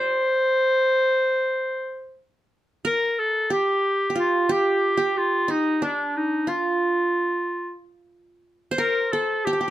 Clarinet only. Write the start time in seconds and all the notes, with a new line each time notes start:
Already playing: C5
2.86 A#4
3.19 A4
3.52 G4
4.20 F4
4.52 G4
5.18 F4
5.51 D#4
5.84 D4
6.17 D#4
6.49 F4
8.79 A#4
9.12 A4
9.45 G4